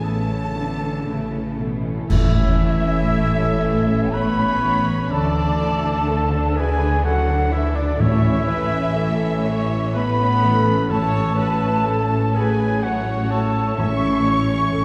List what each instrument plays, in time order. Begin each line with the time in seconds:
Already playing: timpani A2, harp A2 E3 B3 C#4 E4 E5, french horn section C#4
0.01 double bass section A1, cello section C#3, viola section A3 B3, violin section A3 E4 A5, clarinet A4, harp B4
0.28 viola section E3 A3, violin section C#4 A4, harp C#5
0.54 cello section D3, viola section A3 B3, violin section A3 E4, harp E5
0.79 viola section E3 A3, violin section C#4 A4, harp B4
1.06 double bass section A1, cello section C#3, viola section A3 B3, violin section A3 E4, harp E4
1.32 viola section E3 A3, violin section C#4 A4, harp C#4
1.59 cello section B2, harp E3, viola section A3 B3, violin section A3 E4
1.83 viola section E3 A3, violin section C#4 A4, harp C#4
2.09 double bass section A1, timpani A2, harp A2, cello section A2, french horn section E3, violin section A3 E5, oboe E4, flute E5, concert bass drum, crash
2.34 harp E3, violin section C#4
2.59 violin section A3, harp C#4
2.84 violin section C#4, harp E4
3.07 violin section A3, viola section A4
3.35 violin section C#4, harp C#5
3.60 violin section A3, harp E5
3.87 violin section C#4
4.12 violin section A3 B5, french horn section B3, harp E4, oboe B4, viola section C#5, flute B5
4.38 violin section C#4, harp C#4
4.63 harp E3, violin section A3
4.88 harp C#4, violin section C#4
5.11 double bass section D2, cello section D3, harp D3, violin section A3 A5, french horn section A3, oboe A4, viola section D5, flute A5
5.36 harp A3, violin section D4
5.61 harp D4, violin section E4
5.85 violin section D4, harp E4
6.08 violin section A3, harp F#4, viola section A4
6.32 violin section D4, harp D5
6.56 violin section E4 G#5, oboe G#4, french horn section G#4, viola section B4, harp E5, flute G#5
6.80 violin section D4, harp F#4
7.04 french horn section F#3, violin section A3 F#5, harp E4, oboe F#4, viola section A4, flute F#5
7.28 violin section D4, harp D4
7.52 french horn section E3, harp A3, violin section E4 E5, oboe E4, flute E5
7.75 french horn section D3, oboe D4, violin section D4 D5, harp D4, flute D5
7.98 double bass section A1, harp A2, timpani A2, cello section A2, french horn section E3, violin section A3 E5, oboe E4, viola section C#5, flute E5
8.23 harp E3, violin section C#4
8.48 violin section A3, harp C#4, viola section B4
8.71 violin section C#4, harp E4
8.95 violin section A3, viola section A4
9.20 violin section C#4, harp C#5
9.45 violin section A3, viola section C#5, harp E5
9.70 violin section C#4
9.94 violin section A3 B5, french horn section B3, harp E4, viola section B4, oboe B4, flute B5
10.19 harp C#4, violin section C#4
10.43 harp E3, violin section A3, viola section A4
10.67 harp C#4, violin section C#4
10.90 harp A2, timpani A2, french horn section A3, violin section A3 A5, oboe A4, viola section C#5, flute A5
11.15 harp A3, violin section C#4
11.38 harp C#4, violin section F#4, viola section B4
11.63 violin section C#4, harp F#4
11.87 violin section A3, viola section A4, harp C#5
12.11 violin section C#4, harp F#4
12.35 violin section F#4 G#5, oboe G#4, french horn section G#4, viola section B4, harp F#5, flute G#5
12.60 violin section C#4, harp C#5
12.83 french horn section F#3, violin section A3 F#5, oboe F#4, harp F#4, viola section C#5, flute F#5
13.08 harp C#4, violin section C#4
13.31 harp A3, french horn section A3, violin section F#4 A5, oboe A4, flute A5
13.54 violin section C#4, harp C#4
13.77 double bass section A1, harp A2, timpani A2, cello section A2, violin section C#4 C#6, french horn section C#4, oboe C#5, viola section E5, flute C#6
14.02 harp E3, violin section E4
14.25 harp C#4, violin section C#4, viola section C#5
14.50 violin section E4, harp E4
14.73 double bass section A1, cello section A2, violin section C#4, viola section A4, harp E5